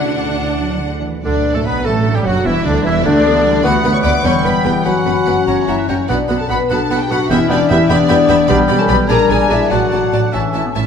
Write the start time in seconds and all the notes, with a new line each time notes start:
Already playing: D2 D3 A3 D4 F#4 A4 F#5
0.36 E4
0.58 F#3 F#4
0.80 D3 A4
1.03 E3 D4
1.24 D2 B2 D3 F#3 D4 D5
1.45 B3
1.54 A2 A3 A4 A5
1.65 B1 B2 B3 D4 B4 B5
1.85 A1 A2 A3 F#4 A4 A5
2.06 D4
2.15 G2 G3 G4 G5
2.25 F#1 F#2 F#3 F#4 F#5
2.45 E1 E2 E3 G3 E4 E5
2.65 D2 D3 D4 E4 D5
2.84 E1 E2 E3 E4 G4 E5
3.04 D2 D3 A3 D4 B4 D5
3.25 B3 G4
3.45 G3 E4
3.63 D2 D3 A3 B3 F#4 B4 F#5 B5
3.84 D2 B3 B4 F#5 B5
3.93 C#5 C#6
4.03 D2 B3 F#4 B4 D5 F#5 B5 D6
4.24 E1 E2 E3 G3 B3 B4 C#5 G5 B5 C#6
4.44 E1 E2 B3 E4 B4 G5 B5
4.65 E1 E2 B3 E4 G4 B4 G5 B5
4.84 F#1 F#2 F#3 B3 C#4 F#4 B4 F#5 B5
5.05 F#1 F#2 B3 B4 F#5 B5
5.26 F#1 F#2 B3 C#4 B4 F#5 B5
5.47 F#1 F#2 C#4 F#4 C#5 F#5 A#5
5.68 F#1 F#2 A#3 C#4 E4 F#4 E5 F#5 A#5
5.79 F#5
5.88 F#1 F#2 C#4 F#4 C#5 F#5 G5 A#5
6.08 B1 B2 B3 D4 F#4 D5 F#5 B5
6.29 B1 B2 B3 F#4 F#5 B5
6.39 A4 A5
6.49 B1 B2 B3 D4 F#4 B4 F#5 B5
6.70 B1 B2 B3 D4 F#4 A4 F#5 A5 B5
6.90 B1 B2 B3 D4 F#4 F#5 B5
7.00 G4 G5
7.10 B1 B2 B3 F#4 F#5 B5
7.30 E1 E2 E3 B3 C#4 E4 G4 E5 G5 B5
7.49 E1 E2 B3 D4 E4 G4 D5 E5 G5 B5
7.69 E1 E2 B3 E4 G4 E5 G5 B5
7.89 E1 E2 B3 D4 G4 B4 D5 E5 G5 B5
8.08 E1 E2 B3 G4 E5 G5 B5
8.28 E1 E2 B3 E4 G4 E5 G5 B5
8.48 B1 B2 G3 B3 D4 G4 D5 G5 B5
8.68 B1 B2 B3 G4 D5 B5
8.79 C#4 A4 A5
8.88 B1 B2 B3 D4 G4 B4 D5 B5
9.08 A#1 A#2 G3 D4 G#4 A#4 D5 G#5 A#5
9.29 A#1 A#2 G#3 D4 G#4 D5 G#5
9.50 A#1 A#2 D4 E4 G#4 A#4 D5 E5 G#5
9.71 A1 A2 F#3 D4 F#4 D5 F#5 A5
9.91 A1 A2 A3 D4 F#4 D5 A5
10.12 A1 A2 D4 F#4 D5 A5
10.33 A1 A2 E3 C#4 E4 E5 A5
10.54 A1 A2 A3 C#4 E4 E5 A5
10.66 B3
10.75 A1 A2 C#4 E4 C#5 E5 A5